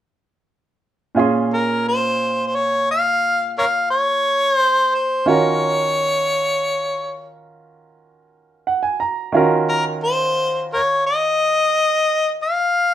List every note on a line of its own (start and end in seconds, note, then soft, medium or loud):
1.15 5.20 A#2 soft
1.15 5.21 C#4 soft
1.15 5.21 F4 soft
1.15 5.22 G#4 soft
1.19 5.22 C6 medium
1.54 1.84 A#4 medium
1.88 2.47 C5 medium
2.47 2.57 C5 medium
2.55 2.88 C#5 medium
2.91 3.53 F5 medium
3.59 3.65 A#4 medium
3.59 3.65 C#5 medium
3.59 3.89 F5 medium
3.91 4.56 C#5 medium
4.56 4.95 C5 medium
4.95 5.29 C5 medium
5.26 9.30 D#3 soft
5.26 9.30 C#4 soft
5.26 9.30 F4 soft
5.26 9.31 F#4 soft
5.26 9.31 A#4 soft
5.26 7.30 C#5 medium
8.67 8.82 F#5 soft
8.83 8.98 G#5 soft
9.00 9.31 A#5 soft
9.32 12.94 D#3 medium
9.32 12.94 C#4 soft
9.32 12.94 F4 soft
9.32 12.94 F#4 soft
9.37 12.94 A#4 medium
9.69 9.84 A#4 medium
10.04 10.67 C5 medium
10.73 10.81 A#4 soft
10.73 11.03 C#5 medium
11.07 12.37 D#5 medium
12.43 12.94 F5 medium